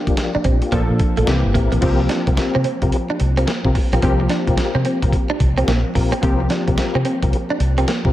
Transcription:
Already playing: synth keys F3 A#3 D4 G4
0.07 tonewheel organ A#3 D4 F4 G4, muted fingered electric bass stroke, kick, closed hi-hat
0.17 tonewheel organ A#3 D4 F4 G4, muted clean electric guitar stroke, snare, closed hi-hat
0.35 clean electric guitar D4, muted fingered electric bass stroke
0.44 fingered electric bass A#1, clean electric guitar C4, kick, closed hi-hat
0.62 tonewheel organ A#3 D4 F4 G4, closed hi-hat
0.72 fingered electric bass A#1, synth keys F3 A#3 D4 A4, clean electric guitar A#3, kick, closed hi-hat
0.90 fingered electric bass A#2
0.99 muted clean electric guitar stroke, kick, closed hi-hat
1.17 fingered electric bass A#1, clean electric guitar A3, tonewheel organ A#3 D4 F4 A4, closed hi-hat
1.27 fingered electric bass C2, synth keys E3 A#3 C4 G4, muted clean electric guitar stroke, snare, closed hi-hat
1.45 fingered electric bass G1
1.54 fingered electric bass A1, clean electric guitar A#3, tonewheel organ C4 E4 G4 A#4, kick, closed hi-hat
1.72 fingered electric bass A#1, clean electric guitar A#3, closed hi-hat
1.81 fingered electric bass C2, synth keys F3 A#3 C4 G4, tonewheel organ C4 F4 G4 A#4, clean electric guitar C4, kick, closed hi-hat, crash
2.00 muted clean electric guitar stroke
2.09 clean electric guitar D4, snare, closed hi-hat
2.27 fingered electric bass C2, tonewheel organ C4 F4 G4 A#4, kick, closed hi-hat
2.37 tonewheel organ C4 F4 G4 A#4, muted clean electric guitar stroke, muted fingered electric bass stroke, snare, closed hi-hat
2.55 fingered electric bass C3, clean electric guitar C4
2.64 clean electric guitar C4, closed hi-hat
2.82 fingered electric bass C2, tonewheel organ C4 F4 G4 A#4, kick, closed hi-hat
2.92 closed hi-hat
3.10 clean electric guitar D4
3.20 fingered electric bass C2, muted clean electric guitar stroke, closed hi-hat
3.37 tonewheel organ C4 F4 G4 A#4, clean electric guitar C4, closed hi-hat
3.47 clean electric guitar A#3, snare, closed hi-hat
3.65 fingered electric bass C3, tonewheel organ C4 F4 G4 A#4, kick
3.75 muted clean electric guitar stroke, kick, open hi-hat
3.92 fingered electric bass A#1, tonewheel organ C4 F4 G4 A#4, clean electric guitar C4, closed hi-hat
4.02 fingered electric bass C2, synth keys F3 A#3 C4 G4, tonewheel organ C4 F4 G4 A#4, clean electric guitar C4, kick, closed hi-hat
4.20 muted clean electric guitar stroke
4.29 clean electric guitar D4, snare, closed hi-hat
4.47 fingered electric bass C2, tonewheel organ C4 F4 G4 A#4, kick, closed hi-hat
4.57 tonewheel organ C4 F4 G4 A#4, muted clean electric guitar stroke, muted fingered electric bass stroke, snare, closed hi-hat
4.75 fingered electric bass C3, clean electric guitar C4
4.85 clean electric guitar C4, closed hi-hat
5.02 fingered electric bass C2, tonewheel organ C4 F4 G4 A#4, kick, closed hi-hat
5.13 kick, closed hi-hat
5.30 clean electric guitar D4
5.40 fingered electric bass C2, muted clean electric guitar stroke, kick, closed hi-hat
5.57 tonewheel organ C4 F4 G4 A#4, clean electric guitar C4, closed hi-hat
5.67 fingered electric bass A#1, clean electric guitar A#3, snare, closed hi-hat
5.95 fingered electric bass A#1, tonewheel organ C4 F4 G4 A#4, muted clean electric guitar stroke, kick, open hi-hat
6.12 clean electric guitar C4, closed hi-hat
6.22 fingered electric bass C2, synth keys F3 A#3 C4 G4, tonewheel organ C4 F4 G4 A#4, clean electric guitar C4, kick, closed hi-hat
6.40 muted clean electric guitar stroke
6.50 clean electric guitar D4, snare, closed hi-hat
6.67 fingered electric bass C2, tonewheel organ C4 F4 G4 A#4, kick, closed hi-hat
6.78 tonewheel organ C4 F4 G4 A#4, muted clean electric guitar stroke, muted fingered electric bass stroke, snare, closed hi-hat
6.95 fingered electric bass C3, clean electric guitar C4
7.05 clean electric guitar C4, closed hi-hat
7.22 fingered electric bass C2, tonewheel organ C4 F4 G4 A#4, kick, closed hi-hat
7.33 closed hi-hat
7.50 clean electric guitar D4
7.60 fingered electric bass C2, muted clean electric guitar stroke, closed hi-hat
7.77 tonewheel organ C4 F4 G4 A#4, clean electric guitar C4, closed hi-hat
7.88 clean electric guitar A#3, snare, closed hi-hat
8.05 fingered electric bass C3, tonewheel organ C4 F4 G4 A#4, kick

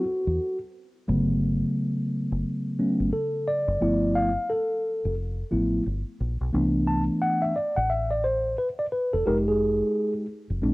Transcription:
Already playing: tine electric piano F#4
0.27 fingered electric bass E2
1.08 fingered electric bass G1, tine electric piano C#3 F#3 A3 B3
2.32 fingered electric bass F#1
2.79 tine electric piano F#3 A3 B3 C#4
3.00 fingered electric bass G1
3.13 tine electric piano A4
3.48 tine electric piano D5
3.68 fingered electric bass F#1
3.81 fingered electric bass G1, tine electric piano F3 A3 B3 E4
4.15 tine electric piano F5
4.50 tine electric piano A4
5.05 fingered electric bass F1
5.51 fingered electric bass A1, tine electric piano F3 A3 B3 E4
5.86 fingered electric bass G1
6.20 fingered electric bass A#1
6.41 fingered electric bass B1
6.53 fingered electric bass C2, tine electric piano E3 A3 B3 D4
6.87 tine electric piano A5
7.22 tine electric piano F#5
7.42 tine electric piano E5
7.56 tine electric piano D5
7.76 fingered electric bass A1, tine electric piano F#5
7.90 tine electric piano E5
8.11 tine electric piano D5
8.24 tine electric piano C5
8.58 tine electric piano B4
8.79 tine electric piano D5
8.92 tine electric piano B4
9.13 fingered electric bass E1, tine electric piano A4
9.26 fingered electric bass F1, tine electric piano G#3 D#4 G4 A#4
9.48 tine electric piano G#4
10.50 fingered electric bass F1
10.62 fingered electric bass A#1, tine electric piano G#3 C4 D4

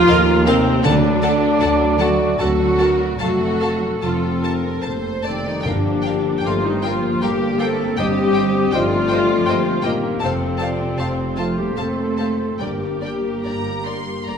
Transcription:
Already playing: grand piano D#2 A#3 F4 A#4, harp D#3 F3 A#4, cello section F3, french horn section A#3, clarinet F4, viola section F4, cor anglais C5
0.08 double bass section D#2, grand piano A3, violin section A#4 D#5 F5, cor anglais A#4
0.29 grand piano A#3
0.45 cello section C3, french horn section D#3, viola section C4, clarinet C4, harp A#4, violin section A#4 D#5 F5, grand piano A#4
0.66 grand piano A#3
0.84 double bass section D2, grand piano D2, harp D3, cello section D3, timpani D3, french horn section F#3, clarinet D4, viola section D4, violin section A4 F#5 A5, cor anglais D5
1.04 grand piano D4
1.22 harp A3, grand piano A4, violin section A4 F#5 A5
1.42 grand piano D4
1.60 double bass section D2, grand piano F#4, harp F#4, violin section A4 F#5 A5
1.80 grand piano D4
1.99 cello section F#3, french horn section A3, viola section F#4, clarinet F#4, violin section A4 F#5 A5, grand piano A4, harp D5
2.20 grand piano D4
2.39 double bass section D2, cello section F#3, french horn section F#3, grand piano C4, viola section F#4, clarinet F#4, violin section A4 F#5 A5, cor anglais A4
2.60 grand piano D4
2.79 grand piano F#4, violin section A4 F#5 A5, cor anglais A#4, harp D5
3.00 grand piano D4
3.20 double bass section F1, cello section F#3, french horn section A3, viola section F#4, clarinet F#4, violin section A4 F5 A5, cor anglais A4
3.40 grand piano C4
3.60 harp C4, grand piano A4, violin section A4 F5 A5
3.81 grand piano C4
4.02 double bass section F1, cello section F3, french horn section C4, grand piano F4, viola section F4, clarinet F4, violin section A4 A5
4.22 grand piano C4
4.42 violin section A#4 A5, grand piano C5, harp C5
4.63 grand piano C4
4.83 double bass section F1, grand piano A#3, harp A4, violin section C5 A5
5.02 grand piano C4
5.23 cello section C3, french horn section D#3, viola section C4, grand piano A4, harp C5, violin section D5 A5
5.27 clarinet C4
5.44 cello section D#3, french horn section G3, grand piano C4, viola section D#4, clarinet D#4
5.62 double bass section G1, grand piano G2, timpani G2, harp G2, cello section D3, french horn section F3, violin section A#4 F5 G5
5.67 viola section D4, clarinet D4
5.84 grand piano A#3
6.02 harp G3, grand piano G4, violin section G5
6.06 violin section A#4 F5
6.24 grand piano A#3
6.40 violin section G5
6.44 double bass section G1, cello section F3, french horn section A3, harp F4, viola section F4, grand piano F4, clarinet F4, violin section A#4 F5, cor anglais C5
6.63 cello section D#3, french horn section G3, grand piano A#3, viola section D#4, clarinet D#4
6.82 cello section F3, french horn section A#3, clarinet F4, viola section F4, grand piano G4, harp D5, violin section F5 G5
6.87 violin section A#4
7.03 grand piano A#3
7.21 double bass section G1, cello section G3, grand piano A3, french horn section A#3, viola section G4, harp G4, clarinet G4, cor anglais A#4, violin section A#4 F5 G5
7.42 grand piano A#3
7.59 cello section A3, french horn section C4, grand piano G4, viola section A4, clarinet A4, violin section A#4 F5 G5
7.80 grand piano A#3
7.97 double bass section G1, timpani G2, harp G2, grand piano G2, cello section G3, french horn section C4, viola section G4, clarinet G4, violin section C5 D#5 G5, cor anglais D#5
8.19 grand piano C4
8.33 grand piano G4, violin section C5 D#5 G5
8.55 grand piano C4
8.71 double bass section G1, cello section F3, french horn section A3, harp D#4, grand piano D#4, viola section F4, clarinet F4, violin section C5 D#5 G5, cor anglais D5
8.92 grand piano C4
9.08 grand piano G4, harp C5, violin section C5 G5
9.12 violin section D#5
9.30 grand piano C4
9.45 double bass section G1, grand piano A#3, harp G4, cor anglais C5, violin section C5 D#5 G5
9.66 grand piano C4
9.83 cello section A#2, french horn section D#3, viola section A#3, clarinet A#3, grand piano G4, cor anglais A#4, harp C5, violin section C5 D#5 G5
10.03 grand piano C4
10.20 double bass section F1, harp F2, grand piano F2, cello section C3, french horn section F3, viola section C4, clarinet C4, cor anglais A4, violin section C5 A5
10.24 violin section F5
10.42 grand piano C4
10.59 harp A3, grand piano A4, violin section C5 F5 A5, cor anglais D5
10.79 grand piano C4
10.98 double bass section F1, grand piano F4, violin section C5 F5 A5, cor anglais C5
11.18 grand piano C4
11.36 cello section F3, french horn section A3, viola section F4, clarinet F4, grand piano A4, violin section C5 F5 A5, harp C5
11.57 cello section G3, french horn section A#3, grand piano C4, clarinet G4, viola section G4
11.76 double bass section F1, cello section A3, grand piano A#3, french horn section C4, viola section A4, harp A4, clarinet A4, violin section C5 F5 A5
12.00 grand piano C4
12.16 grand piano A4, violin section C5 F5 A5
12.41 grand piano C4
12.59 double bass section G1, harp G2, timpani G2, grand piano G2, cello section G3, french horn section A#3, viola section G4, clarinet G4, violin section A#4 D5 G5, cor anglais A#4
12.83 grand piano A#3
13.02 harp G3, grand piano G4, violin section A#4 D5 G5
13.25 grand piano A#3
13.44 double bass section G1, harp D4, grand piano D4, violin section A#4 D5 A#5
13.66 grand piano A#3
13.86 harp A#3, grand piano G4, violin section A#4 D5 C6
14.08 grand piano A#3
14.27 double bass section G1, grand piano A3, harp G4, violin section A#4 D5 A#5

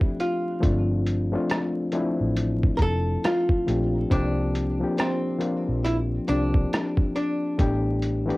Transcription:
Already playing: reed electric piano F3 A3 C4 D4 G4 A4, hollow-body jazz guitar E4
0.01 kick
0.20 hollow-body jazz guitar F4, closed hi-hat
0.60 fingered electric bass G1, reed electric piano F3 A3 C4 D4 F4, kick, closed hi-hat
1.07 closed hi-hat
1.32 reed electric piano F3 A3 C4 D4 F4
1.50 cross-stick, closed hi-hat
1.92 reed electric piano F3 A3 C4 D4 E4, closed hi-hat
2.21 fingered electric bass A1
2.37 closed hi-hat
2.63 kick
2.77 fingered electric bass F1, hollow-body jazz guitar A#4, kick, closed hi-hat
2.82 hollow-body jazz guitar A4
3.24 hollow-body jazz guitar F4, cross-stick, closed hi-hat
3.49 kick
3.66 fingered electric bass A#1, reed electric piano F3 A3 C4 D4 G4, closed hi-hat
4.10 fingered electric bass C2, reed electric piano F3 A#3 C4 D4 G4, hollow-body jazz guitar D4, kick, closed hi-hat
4.55 closed hi-hat
4.80 reed electric piano F3 A#3 C4 D4 G4
4.98 hollow-body jazz guitar C4, cross-stick, closed hi-hat
5.38 reed electric piano F3 A#3 C4 D4 F4, closed hi-hat
5.69 fingered electric bass A#1
5.84 hollow-body jazz guitar E4, closed hi-hat
6.28 fingered electric bass C2, reed electric piano F3 A#3 C4 D4 G4, hollow-body jazz guitar D4, closed hi-hat
6.54 kick
6.73 cross-stick, closed hi-hat
6.97 kick
7.16 hollow-body jazz guitar D4, closed hi-hat
7.58 fingered electric bass A1, reed electric piano E3 A3 B3 D4 G4, kick, closed hi-hat
8.02 closed hi-hat
8.26 reed electric piano E3 A3 B3 D4 G4
8.30 closed hi-hat

